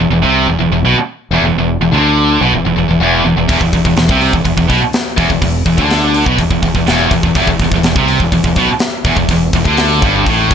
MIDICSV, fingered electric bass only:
0, 0, Header, 1, 3, 480
1, 0, Start_track
1, 0, Key_signature, 1, "minor"
1, 0, Tempo, 483871
1, 1548, Time_signature, 4, 2, 24, 8
1, 10460, End_track
2, 0, Start_track
2, 0, Title_t, "Fingered electric bass"
2, 0, Program_c, 0, 33
2, 104, Note_on_c, 0, 28, 79
2, 219, Note_off_c, 0, 28, 0
2, 233, Note_on_c, 0, 36, 89
2, 452, Note_off_c, 0, 36, 0
2, 458, Note_on_c, 0, 28, 80
2, 576, Note_off_c, 0, 28, 0
2, 583, Note_on_c, 0, 28, 79
2, 696, Note_off_c, 0, 28, 0
2, 702, Note_on_c, 0, 28, 79
2, 814, Note_off_c, 0, 28, 0
2, 820, Note_on_c, 0, 35, 84
2, 925, Note_off_c, 0, 35, 0
2, 1296, Note_on_c, 0, 28, 90
2, 1400, Note_off_c, 0, 28, 0
2, 1406, Note_on_c, 0, 28, 81
2, 1527, Note_off_c, 0, 28, 0
2, 1544, Note_on_c, 0, 28, 78
2, 1768, Note_off_c, 0, 28, 0
2, 1790, Note_on_c, 0, 28, 70
2, 1897, Note_off_c, 0, 28, 0
2, 1903, Note_on_c, 0, 38, 84
2, 2349, Note_off_c, 0, 38, 0
2, 2392, Note_on_c, 0, 35, 94
2, 2500, Note_off_c, 0, 35, 0
2, 2506, Note_on_c, 0, 28, 72
2, 2616, Note_off_c, 0, 28, 0
2, 2627, Note_on_c, 0, 28, 75
2, 2736, Note_off_c, 0, 28, 0
2, 2745, Note_on_c, 0, 28, 77
2, 2856, Note_off_c, 0, 28, 0
2, 2864, Note_on_c, 0, 28, 73
2, 2971, Note_off_c, 0, 28, 0
2, 2977, Note_on_c, 0, 28, 88
2, 3202, Note_off_c, 0, 28, 0
2, 3222, Note_on_c, 0, 28, 81
2, 3331, Note_off_c, 0, 28, 0
2, 3337, Note_on_c, 0, 28, 85
2, 3450, Note_off_c, 0, 28, 0
2, 3464, Note_on_c, 0, 28, 100
2, 3572, Note_off_c, 0, 28, 0
2, 3578, Note_on_c, 0, 28, 81
2, 3691, Note_off_c, 0, 28, 0
2, 3696, Note_on_c, 0, 28, 69
2, 3810, Note_off_c, 0, 28, 0
2, 3815, Note_on_c, 0, 28, 72
2, 3929, Note_off_c, 0, 28, 0
2, 3949, Note_on_c, 0, 28, 80
2, 4045, Note_off_c, 0, 28, 0
2, 4051, Note_on_c, 0, 36, 85
2, 4278, Note_off_c, 0, 36, 0
2, 4300, Note_on_c, 0, 28, 84
2, 4408, Note_off_c, 0, 28, 0
2, 4414, Note_on_c, 0, 28, 79
2, 4525, Note_off_c, 0, 28, 0
2, 4531, Note_on_c, 0, 28, 73
2, 4647, Note_off_c, 0, 28, 0
2, 4658, Note_on_c, 0, 35, 78
2, 4767, Note_off_c, 0, 35, 0
2, 5136, Note_on_c, 0, 28, 93
2, 5249, Note_off_c, 0, 28, 0
2, 5258, Note_on_c, 0, 28, 85
2, 5365, Note_off_c, 0, 28, 0
2, 5371, Note_on_c, 0, 28, 81
2, 5598, Note_off_c, 0, 28, 0
2, 5611, Note_on_c, 0, 28, 67
2, 5724, Note_off_c, 0, 28, 0
2, 5730, Note_on_c, 0, 38, 79
2, 6181, Note_off_c, 0, 38, 0
2, 6212, Note_on_c, 0, 35, 87
2, 6324, Note_off_c, 0, 35, 0
2, 6330, Note_on_c, 0, 28, 76
2, 6446, Note_off_c, 0, 28, 0
2, 6450, Note_on_c, 0, 28, 75
2, 6562, Note_off_c, 0, 28, 0
2, 6568, Note_on_c, 0, 28, 80
2, 6679, Note_off_c, 0, 28, 0
2, 6685, Note_on_c, 0, 28, 68
2, 6804, Note_off_c, 0, 28, 0
2, 6821, Note_on_c, 0, 28, 93
2, 7044, Note_off_c, 0, 28, 0
2, 7051, Note_on_c, 0, 28, 79
2, 7167, Note_off_c, 0, 28, 0
2, 7176, Note_on_c, 0, 28, 92
2, 7283, Note_off_c, 0, 28, 0
2, 7289, Note_on_c, 0, 28, 87
2, 7399, Note_off_c, 0, 28, 0
2, 7405, Note_on_c, 0, 28, 80
2, 7522, Note_off_c, 0, 28, 0
2, 7528, Note_on_c, 0, 28, 63
2, 7641, Note_off_c, 0, 28, 0
2, 7647, Note_on_c, 0, 28, 72
2, 7766, Note_off_c, 0, 28, 0
2, 7771, Note_on_c, 0, 28, 76
2, 7884, Note_off_c, 0, 28, 0
2, 7890, Note_on_c, 0, 36, 76
2, 8120, Note_off_c, 0, 36, 0
2, 8134, Note_on_c, 0, 28, 78
2, 8250, Note_off_c, 0, 28, 0
2, 8256, Note_on_c, 0, 28, 80
2, 8362, Note_off_c, 0, 28, 0
2, 8368, Note_on_c, 0, 28, 84
2, 8480, Note_off_c, 0, 28, 0
2, 8486, Note_on_c, 0, 35, 77
2, 8607, Note_off_c, 0, 35, 0
2, 8975, Note_on_c, 0, 28, 94
2, 9084, Note_off_c, 0, 28, 0
2, 9090, Note_on_c, 0, 28, 88
2, 9205, Note_off_c, 0, 28, 0
2, 9211, Note_on_c, 0, 28, 74
2, 9442, Note_off_c, 0, 28, 0
2, 9456, Note_on_c, 0, 28, 70
2, 9569, Note_off_c, 0, 28, 0
2, 9575, Note_on_c, 0, 38, 87
2, 9917, Note_off_c, 0, 38, 0
2, 9934, Note_on_c, 0, 31, 96
2, 10165, Note_off_c, 0, 31, 0
2, 10178, Note_on_c, 0, 33, 88
2, 10407, Note_off_c, 0, 33, 0
2, 10420, Note_on_c, 0, 28, 86
2, 10460, Note_off_c, 0, 28, 0
2, 10460, End_track
3, 0, Start_track
3, 0, Title_t, "Muted fingered electric bass strokes"
3, 931, Note_on_c, 9, 29, 37
3, 1030, Note_off_c, 9, 29, 0
3, 4773, Note_on_c, 9, 29, 38
3, 4872, Note_off_c, 9, 29, 0
3, 8621, Note_on_c, 9, 29, 37
3, 8720, Note_off_c, 9, 29, 0
3, 10460, End_track
0, 0, End_of_file